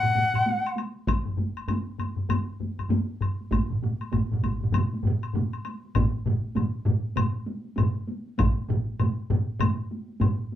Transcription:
Already playing: F#5
0.03 taiko mid, taiko high
0.15 taiko mid, taiko high
0.33 taiko mid, taiko high, high woodblock
0.46 taiko high
0.64 taiko high, high woodblock
0.77 taiko high, high woodblock
0.95 taiko high
1.07 taiko, taiko low-mid, taiko high, high woodblock
1.25 taiko low-mid, taiko high
1.37 taiko low-mid, taiko high
1.57 taiko high, high woodblock
1.68 taiko low-mid, taiko high, high woodblock
1.87 taiko high
1.98 taiko low-mid, taiko high, high woodblock
2.16 taiko low-mid, taiko high
2.29 taiko low-mid, taiko high, high woodblock
2.60 taiko low-mid, taiko high
2.79 taiko low-mid, taiko high, high woodblock
2.90 taiko low-mid, taiko high
3.10 taiko high
3.21 taiko low-mid, high woodblock
3.41 taiko high
3.51 taiko, taiko low-mid, taiko mid, taiko high, high woodblock
3.70 taiko low-mid, taiko mid
3.82 taiko low-mid, taiko mid, taiko high
4.01 taiko high, high woodblock
4.12 taiko, taiko low-mid, taiko mid, taiko high, high woodblock
4.31 taiko low-mid, taiko mid, taiko high
4.43 taiko, taiko low-mid, taiko mid, taiko high, high woodblock
4.60 taiko low-mid, taiko mid, taiko high
4.72 taiko low-mid, taiko mid, taiko high, high woodblock
4.94 taiko high
5.03 taiko low-mid, taiko mid, taiko high
5.23 taiko high, high woodblock
5.33 taiko low-mid, taiko mid, taiko high
5.53 taiko high, high woodblock
5.65 taiko high, high woodblock
5.85 taiko high
5.95 taiko, taiko low-mid, taiko mid, taiko high, high woodblock
6.15 taiko high
6.26 taiko low-mid, taiko mid, taiko high
6.44 taiko high
6.56 taiko low-mid, taiko mid, taiko high, high woodblock
6.85 taiko low-mid, taiko mid, taiko high
7.04 taiko high
7.16 taiko low-mid, taiko mid, taiko high, high woodblock
7.34 taiko high
7.46 taiko high
7.64 taiko high
7.76 taiko low-mid, taiko mid, taiko high, high woodblock
7.95 taiko high
8.07 taiko high
8.26 taiko high
8.38 taiko, taiko low-mid, taiko mid, taiko high, high woodblock
8.57 taiko high
8.69 taiko low-mid, taiko mid, taiko high
8.89 taiko high
8.99 taiko low-mid, taiko mid, taiko high, high woodblock
9.30 taiko low-mid, taiko mid, taiko high
9.50 taiko high
9.60 taiko low-mid, taiko mid, taiko high, high woodblock
9.80 taiko high
9.91 taiko high
10.08 taiko high
10.20 taiko low-mid, taiko mid, taiko high, high woodblock
10.40 taiko high

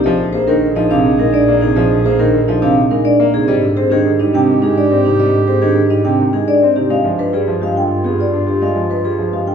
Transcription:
0.04 A#1 F3 G#4 A#4 D#5
0.19 D3
0.33 A#3 G#4 C5
0.47 D#3 D4 A#4
0.62 D3
0.76 F3 D#4 D#5
0.90 C3 D4 F5
1.05 D#3
1.18 G#3 D#4 A#4
1.33 D4 D5
1.48 A#3
1.61 C3 D#4 G#4
1.76 F3 A#4 D#5
1.91 D3
2.04 A#3 G#4 C5
2.19 D#3 D4 A#4
2.34 D3
2.48 F3 D#4 D#5
2.62 C3 D4 F5
2.76 D#3
2.91 G#3 D#4 A#4
3.05 D4 D5
3.20 A#3
3.34 C3 D#4 G#4
3.48 G#2 G3 G4 C5 D#5
3.62 D3
3.77 C4 G#4 C5
3.90 D#3 D4 G#4
4.05 D3
4.19 G3 D#4 D#5
4.34 C3 D4 G5
4.49 D#3
4.62 G#3 D#4 G#4
4.76 D4 D5
4.91 C4
5.05 C3 D#4 G4
5.19 G3 C5 D#5
5.33 D3
5.47 C4 G#4 C5
5.62 D#3 D4 G#4
5.76 D3
5.90 G3 D#4 D#5
6.04 C3 D4 G5
6.19 D#3
6.33 G#3 D#4 G#4
6.48 D4 D5
6.62 C4
6.76 C3 D#4 G4
6.90 G2 G#3 F4 D5 F5
7.04 F3
7.18 D4 B4
7.33 G3 F4 G#4
7.48 F3
7.62 G#3 G4 F5
7.76 D3 F4 G5
8.04 B3 G4 G#4
8.19 F4 D5
8.33 D4
8.47 D3 G4
8.62 G#3 D5 F5
8.76 F3
8.90 D4 B4
9.04 G3 F4 G#4
9.18 F3
9.33 G#3 G4 F5
9.47 D3 F4 G5

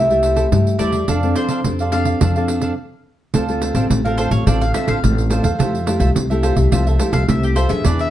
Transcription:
Already playing: C2 C3 E5
0.10 A3 E4 G4 A4 C5 E5, pandeiro
0.22 E4 A4 C5 E5, pandeiro
0.36 E4 A4 C5 E5, pandeiro
0.52 G2 G3 A3 E4 G4, pandeiro
0.67 pandeiro
0.78 E2 A3 E4 G4 A4 C5 D5 E5, pandeiro
0.92 A4 C5 E5, pandeiro
1.08 F2 F3 C4 D4 A4 D5 F5, pandeiro
1.23 C4 D4 A4, pandeiro
1.35 D4 A4 C5 D5 F5, pandeiro
1.49 D4 A4 D5 F5, pandeiro
1.64 F2 C3 C4 D4 A4, pandeiro
1.79 A4 D5 F5, pandeiro
1.92 C4 D4 A4 D5 F5, pandeiro
2.05 A4 D5 F5, pandeiro
2.21 F2 F3 D4 A4 D5 F5, pandeiro
2.36 C4 D4 A4 D5 F5, pandeiro
2.48 D4 A4 D5 F5, pandeiro
2.61 D4 A4 D5 F5, pandeiro
3.34 D2 D3 C4 D4 F4 A4 C5 F5, pandeiro
3.49 C4 F4 A4, pandeiro
3.62 D4 A4 C5 F5, pandeiro
3.75 A1 C4 D4 F4 A4 C5 F5, pandeiro
3.90 A1 A3, pandeiro
4.05 C4 F4 A4 A#4 C5 F5, pandeiro
4.18 D4 A4 C5 F5, pandeiro
4.31 A1 A4 C5 C#5 F5, pandeiro
4.46 A1 D3 C4 D4 F4 A4 C5 D5 F5, pandeiro
4.61 A4 C5 F5, pandeiro
4.74 C4 D4 F4 A4 C5 E5 F5, pandeiro
4.87 A1 D4 A4 C5 F5, pandeiro
5.03 A1 A3, pandeiro
5.18 pandeiro
5.30 C4 D4 F4 A4 C5 F5, pandeiro
5.43 E2 A4 C5 F5, pandeiro
5.59 F2 F3 A3 E4 F4 G4 A4 C5 E5, pandeiro
5.75 pandeiro
5.86 A3 E4 F4 G4 A4 C5 E5, pandeiro
5.99 C2 F4 A4 C5 E5, pandeiro
6.15 C2 C3, pandeiro
6.30 A3 E4 G4 A4 C5 E5, pandeiro
6.43 F4 A4 C5 E5, pandeiro
6.56 C2 A3 E4 G4 A4 C5 E5, pandeiro
6.72 C2 F3 F4 A4 C5 E5, pandeiro
6.86 A4 C5 E5, pandeiro
6.99 A3 E4 F4 G4 A4 C5 E5, pandeiro
7.12 C2 F4 A4 C5 E5 F5, pandeiro
7.28 C2 C3 A3 E4 G4 E5, pandeiro
7.43 G4, pandeiro
7.55 F4 A4 C5 E5, pandeiro
7.69 F2 B3 D4 G#4 A4 C5 E5, pandeiro
7.84 E2 E3 D4 G#4 B4 D5 E5, pandeiro
7.99 E5, pandeiro

